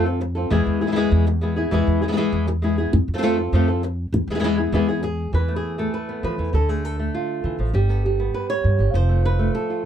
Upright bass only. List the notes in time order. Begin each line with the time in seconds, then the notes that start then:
Already playing: F2
0.51 E2
0.66 E2
1.12 E2
1.72 E2
1.87 E2
2.32 E2
2.93 F2
3.08 F2
3.52 F2
4.13 E2
4.28 E2
4.72 E2
5.33 E2
6.23 E3
6.38 E2
6.53 D2
7.44 D3
7.59 A1
7.73 G1
8.64 G2
8.79 G1
8.94 F1